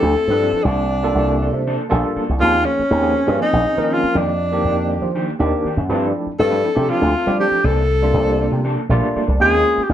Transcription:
Already playing: F3 C4 D4 E4 G4 A4
0.02 D2
0.16 C4 E4 A4
0.28 G2 F3 C4 D4 E4 B4
0.41 F3 C4 E4 A4
0.52 muted slap bass stroke
0.64 C2 F3 A#3 D4 A4
1.03 G3 A#3 D4 F4 A4
1.15 C2 F3 A#3 D4 A4
1.42 A#3 D4 A4
1.52 C3
1.67 F3 A#3 D4 A4
1.89 A#1 G3 A#3 D4 F4 A4
2.16 F3 A#3 D4 A4, muted slap bass stroke
2.29 C2
2.39 D#2 F3 A#3 C4 C#4 F4 G#4
2.65 C#4
2.79 muted slap bass stroke
2.90 D#2 F3 C4 C#4 G#4
3.01 F3 A#3 C4 C#4 G#4
3.15 C4 C#4 G#4
3.27 G2 F3 A#3 C4 C#4 G#4
3.40 F3 C4 C#4 D#4 G#4
3.53 A#1
3.64 C4 C#4 G#4
3.76 D#3 F3 A#3 C4 C#4 A#4
3.90 F3 C4 C#4 F4 G#4
4.03 muted slap bass stroke
4.15 F2 D#3 A#3 D4 G4
4.51 D#3 A#3 C4 D4 G4
4.64 F2 D#3 A#3 D4 G4
4.90 A#3 D4 G4
5.02 F3
5.15 D#3 A#3 D4 G4
5.39 D#2 D#3 A#3 C4 D4 G4
5.65 D#3 A#3 D4 G4, muted slap bass stroke
5.77 F#2
5.89 G2 F3 A3 C4 D4 E4 A4
6.27 muted slap bass stroke
6.39 G2 F3 C4 E4 A4
6.50 F3 A3 C4 D4 E4
6.65 C4 E4 A4
6.75 C3 F3 A3 C4 D4 G4
6.89 F3 C4 E4 F4 A4
7.02 D2
7.14 C4 E4 A4
7.26 F3 G3 A3 C4 D4 G4
7.39 F3 C4 E4 G4 A4
7.51 muted slap bass stroke
7.64 C2 F3 A#3 D4 A4
8.02 G3 A3 A#3 D4 F4
8.14 C2 F3 A#3 D4 A4
8.40 A#3 D4 A4
8.52 C3
8.64 F3 A#3 D4 A4
8.89 A#1 G3 A3 A#3 D4 F4 A4 D5
9.16 F3 A#3 D4 A4, muted slap bass stroke
9.28 C2
9.40 D#2 F3 G#3 A#3 C4 C#4 F4 G#4
9.78 muted slap bass stroke
9.83 G4
9.89 D#2

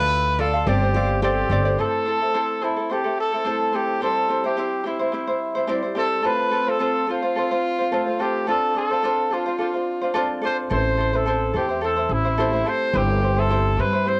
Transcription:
Already playing: D2 A3 F4 A4 B4 D5 F5
0.00 E5
0.38 F4 A4 D5 F5
0.53 F4 A4 F5
0.66 G1 C4 G4 C5 D5
0.82 C4 C5 D5
0.94 C4 G4 C5 D5 F5
1.22 C4 G4 A4 C5 D5
1.50 G1 C4 G4 C5 D5
1.65 C4 C5 D5
1.77 A3 C4 E4 A4 C5
2.06 C4 E4 A4 C5
2.20 C4 E4 A4
2.34 C4 E4 A4 C5
2.61 C4 E4 A4 C5
2.77 C4 E4 A4
2.90 C4 E4 G4 A4 C5
3.04 C4 E4 A4
3.20 A4
3.32 C4 E4 A4
3.45 A3 C4 E4 A4 C5
3.73 C4 E4 G4 A4 C5
4.01 G3 C4 E4 G4 A4 C5
4.28 C4 E4 G4 C5
4.44 C4 E4 G4 C5
4.57 C4 E4 G4 C5
4.84 C4 E4 G4 C5
4.99 C4 E4 C5
5.12 C4 E4 G4 C5
5.27 C4 E4 C5
5.55 C4 E4 C5
5.67 G3 C4 E4 G4 C5 D5
5.82 C4 E4 C5
5.95 C4 E4 G4 A4 C5
6.22 A3 C4 F4 A4 B4 C5
6.51 C4 F4 A4 C5
6.67 C4 F4 A4 C5
6.79 C4 F4 A4 C5
7.07 C4 F4 A4 C5
7.22 C4 F4 C5
7.36 C4 F4 A4 C5
7.51 C4 F4 C5
7.79 C4 F4 C5
7.91 A3 C4 F4 A4 C5
8.06 C4 F4 C5
8.19 C4 F4 G4 A4 C5
8.47 C4 D4 F4 A4 C5 D5
8.75 D4 F4 A4 C5
8.91 D4 F4 C5
9.03 D4 F4 A4 C5
9.31 D4 F4 A4 C5
9.46 D4 F4 C5
9.59 D4 F4 A4 C5
9.74 D4 C5
10.02 D4 F4 C5
10.14 C4 D4 F4 A4 C5 D5
10.42 D4 F4 A4 C5
10.70 A1 A3 C4 E4 A4 B4 C5
10.79 C5
10.97 C4 E4 A4 C5
11.13 C4 E4 A4 C5
11.26 C4 E4 A4 C5
11.53 E2 C4 E4 G4 A4 C5
11.69 C4 E4 C5
11.81 C4 E4 A4 C5
11.96 C4 E4 C5
12.09 A1 E4
12.25 C4 E4 C5
12.38 A3 C4 E4 G4 A4 C5
12.53 C4 E4 C5
12.65 C4 E4 A4 C5
12.93 G1 G3 C4 E4 G4 C5
13.22 C4 E4 G4 C5
13.37 C4 E4 A4 C5
13.50 C4 E4 G4 C5
13.77 G2 C4 E4 G4 B4 C5
13.93 C4 E4 C5
14.05 C4 E4 G4 C5

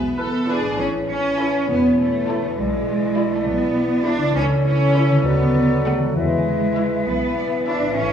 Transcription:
Already playing: B1 B2 E3 G#3 B3 G#4 E5
0.18 E3 A4 B4
0.48 E3 B3 D4 E4 G#4 B4
0.61 A2
0.66 A3
0.70 C#4
0.75 A1 E3 C#5
0.79 C#4 E4
1.09 C#4
1.38 E4 A4
1.69 E1 B3
1.99 A3
2.28 E4 A4
2.40 B2
2.45 D4
2.49 E4
2.54 B4
2.58 B1 G#3 D5
3.17 E4 D5
3.34 A3
3.47 B1 B3
4.06 D4 E4 D5
4.18 C#3
4.22 C#4
4.27 E4
4.32 C#2 C#4 A4 C#5
4.36 E3 A4
4.65 C#4
4.95 E4 A4 C#5
5.08 D3
5.12 A3
5.17 F#4
5.21 D2 F#3 B4 D5
5.26 B3
5.84 A3 A4 B4 F#5
5.98 E3
6.03 G#3
6.07 E4
6.12 B4
6.16 E2 E3 G#3 B4 E5
6.75 E4 B4 E5
7.07 B1 B3 B4
7.37 D5
7.67 D4 E4 C#5 E5
7.80 A2
7.84 A3
7.89 E4
7.93 C#5
7.97 A1 C#4 A4

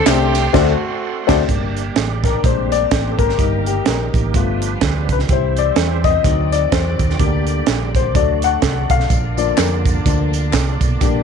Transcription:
Already playing: D3 A4 D5 G5 C6
0.06 C2 A3 C4 D4 G4 C5, snare, clap, ride bell, tambourine
0.34 snare, ride bell, tambourine
0.53 D2 D3 A3 C4 D4 F#4 C5 D5 F#5, kick, snare, crash
1.27 D2 A3 C4 D4 F#4 D5, kick, snare, crash
1.48 G1 G3 A#3 D4 G4 D5, kick, closed hi-hat
1.77 closed hi-hat
1.96 A1, snare, closed hi-hat
2.24 A#4, kick, snare, closed hi-hat
2.43 A#1 G3 G#3 A#3 C4 D4 G4 C5, kick, closed hi-hat
2.72 D5, closed hi-hat
2.91 A1, kick, snare, closed hi-hat
3.11 A4
3.18 G#1 A#4, kick, closed hi-hat
3.29 snare
3.38 G1 D#3 G3 A#3 D#4 A#4, kick, closed hi-hat
3.66 G4, closed hi-hat
3.86 A#1 A#4, snare, closed hi-hat
4.14 A1, kick, closed hi-hat
4.34 G1 F3 A3 B3 D4 F4 B4, kick, closed hi-hat
4.62 closed hi-hat
4.81 D2, kick, snare, closed hi-hat
5.09 C#2 B4, kick, closed hi-hat
5.19 snare
5.29 C2 E3 G3 C4 E4 G4 C5, kick, closed hi-hat
5.57 D5, closed hi-hat
5.76 E2, snare, closed hi-hat
6.04 D#5, kick, closed hi-hat
6.24 D2 D#3 F#3 C4 D#4 F#4 D5, kick, closed hi-hat
6.52 D5, closed hi-hat
6.72 E2 C5, kick, snare, closed hi-hat
6.99 D#2, kick, closed hi-hat
7.10 snare
7.19 D2 D3 G3 A#3 D4 G4 D5, kick, closed hi-hat
7.47 closed hi-hat
7.67 A#1, snare, closed hi-hat
7.95 C5, kick, closed hi-hat
8.14 D2 D3 F#3 A3 D4 F#4 D5, kick, closed hi-hat
8.42 F#5, closed hi-hat
8.62 C2, kick, snare, closed hi-hat
8.90 B1 F5, kick, closed hi-hat
9.00 snare
9.10 A#1 F3 A#3 F4, kick, closed hi-hat, tambourine
9.37 F3 A#3 D4 D5, closed hi-hat, tambourine
9.57 F2 A#4, snare, clap, closed hi-hat, tambourine
9.85 kick, closed hi-hat, tambourine
10.06 D2 F3 A#3 D4, kick, closed hi-hat, tambourine
10.33 closed hi-hat, tambourine
10.53 C2, kick, snare, clap, closed hi-hat, tambourine
10.81 B1, kick, closed hi-hat, tambourine
11.00 A#1 G3 A#3 D4 G4, kick, closed hi-hat, tambourine

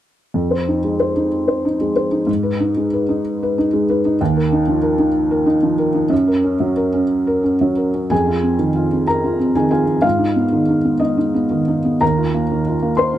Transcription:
0.34 F2
0.51 C5
0.68 D#4
0.84 G#3
1.00 C5
1.16 D#4
1.48 C5
1.65 D#4
1.80 G#3
1.96 C5
2.11 D#4
2.27 G#2
2.43 B4
2.60 D#4
2.77 G#3
2.93 B4
3.09 D#4
3.43 B4
3.58 D#4
3.73 G#3
3.90 B4
4.05 D#4
4.21 D#2
4.37 A#4
4.52 D#4
4.68 F3
4.82 A#4
4.99 D#4
5.31 A#4
5.46 D#4
5.63 F3
5.79 A#4
5.94 D#4
6.10 F#2
6.28 A#4
6.44 C#4
6.60 F#3
6.76 A#4
6.94 C#4
7.27 A#4
7.43 C#4
7.61 F#3
7.77 A#4
7.94 C#4
8.10 F2 G#4 G#5
8.27 F4
8.43 C4
8.59 D#3
8.75 F4
8.92 C4
9.07 A#4 A#5
9.24 F4
9.39 C4
9.55 D#3 G#4 G#5
9.71 F4 G#4 G#5
9.87 C4
10.02 G#2 F4 F5
10.19 D#4
10.36 B3
10.52 D#3
10.69 D#4
10.85 B3
11.00 D#4 D#5
11.17 D#4
11.34 B3
11.51 D#3
11.68 D#4
11.85 B3
12.01 D#2 A#4 A#5
12.17 F4
12.34 A#3
12.51 D#3
12.67 F4
12.82 A#3
12.97 C5 C6
13.14 F4

